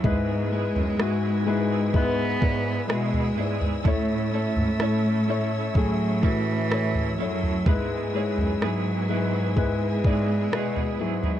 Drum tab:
SD |----r-------r---|----r-------r---|----r-------r---|
FT |o--o----o----o-o|o--o----o----o-o|o--o----o----o-o|
BD |o-------o-o-----|o-------o-o-----|o-------o-o-----|